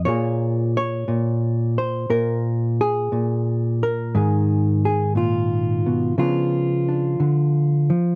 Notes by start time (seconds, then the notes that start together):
0.05 A#2 A#3 F4 G#4 C#5
0.77 C#5
1.08 A#2
1.78 C5
2.10 A#2 A#4
2.81 G#4
3.12 A#2
3.83 A#4
4.15 G#2 D#3 G#4
4.85 G#4
5.15 A#2 F4
5.86 B2
6.18 C#3 F3 B3 D4 F4
6.88 D4
7.20 D3
7.90 F3